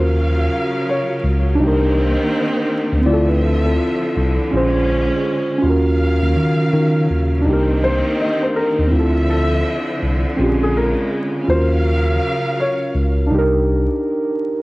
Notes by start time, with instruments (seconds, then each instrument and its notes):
Already playing: tine electric piano D#2, string section C#3 F#3 F5, synth keys C#4 F4 F#4 A#4
0.89 felt piano C#5
1.24 tine electric piano C#2
1.55 synth keys D4 D#4
1.60 tine electric piano C2, string section D#3 A#3 C4, synth keys G4
1.67 synth keys A#4
2.93 tine electric piano D2
3.01 synth keys C4
3.05 tine electric piano D2 F4 D5, string section D3 F3 E5, synth keys E4 F4
3.13 synth keys A4
3.28 tine electric piano D4 B4
3.66 tine electric piano C4 A4
4.17 tine electric piano C2
4.51 tine electric piano A#1, string section G#3 C#4, synth keys C#4 F4 G#4
4.57 synth keys C5
5.58 synth keys C#4 F4
5.63 tine electric piano D#2, string section C#3 F#3 F5, synth keys F#4
5.70 synth keys A#4
6.22 tine electric piano D#2
6.36 tine electric piano D#3
6.73 tine electric piano D#3
7.10 tine electric piano D#2
7.41 synth keys D4
7.45 tine electric piano C2, string section D#3 A#3 C4, synth keys D#4
7.49 synth keys G4 A#4
7.84 felt piano C5
8.21 felt piano D#5
8.43 felt piano C5
8.56 felt piano A#4
8.79 tine electric piano D#2
8.87 synth keys C4
8.91 tine electric piano D2, string section D3 F3 E5, synth keys E4
8.95 synth keys F4 A4
9.30 felt piano A4
10.02 tine electric piano C2
10.36 tine electric piano A#1, string section C#3 G#3, synth keys C4 C#4
10.40 synth keys F4 G4
10.49 synth keys G#4
10.63 felt piano G#4
10.77 felt piano A#4
11.43 synth keys C#4 F4
11.48 tine electric piano D#2, string section C#3 F#3 F5, synth keys F#4, felt piano C5
11.55 synth keys A#4
12.60 felt piano C#5
12.95 tine electric piano C#2
13.27 synth keys D4 D#4
13.31 tine electric piano C2, synth keys G4
13.38 synth keys A#4